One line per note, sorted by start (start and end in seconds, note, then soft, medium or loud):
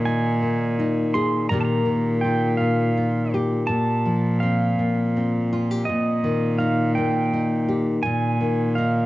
0.00 1.50 A#2 medium
0.00 1.50 D#3 medium
0.05 0.78 D#4 medium
0.05 1.14 G#5 medium
0.42 1.49 A#2 medium
0.79 1.47 D#4 medium
1.14 1.47 G#4 medium
1.14 1.49 C6 medium
1.49 3.69 A#2 medium
1.49 1.87 A#2 medium
1.49 1.84 D#3 medium
1.49 3.65 A#3 medium
1.49 2.24 F4 medium
1.49 1.58 A#5 medium
1.54 3.33 G4 medium
1.61 1.64 A5 medium
1.65 2.25 A#5 medium
1.85 3.68 D#3 medium
2.21 2.96 F4 medium
2.21 2.60 G5 medium
2.57 3.65 A#2 medium
2.57 3.37 F5 medium
2.97 3.65 F4 medium
3.34 4.08 G4 medium
3.67 4.78 A#2 medium
3.67 5.87 A#2 medium
3.67 4.43 A5 medium
4.05 5.82 F3 medium
4.40 5.16 C4 medium
4.40 5.90 F5 medium
4.79 5.87 A#2 medium
5.17 6.59 C4 medium
5.53 5.71 F4 medium
5.71 5.88 G4 medium
5.85 8.04 A#2 medium
5.85 6.60 D#5 medium
5.89 6.24 A#2 medium
6.24 8.39 D#3 medium
6.59 7.32 D#4 soft
6.59 6.95 F5 medium
6.95 8.04 A#2 medium
6.95 7.72 G5 medium
7.33 8.00 D#4 medium
7.69 8.00 G4 medium
8.03 9.06 A#2 medium
8.03 8.41 A#2 medium
8.03 8.78 G#5 medium
8.41 9.06 D#3 medium
8.75 9.06 D#4 medium
8.75 9.06 F5 medium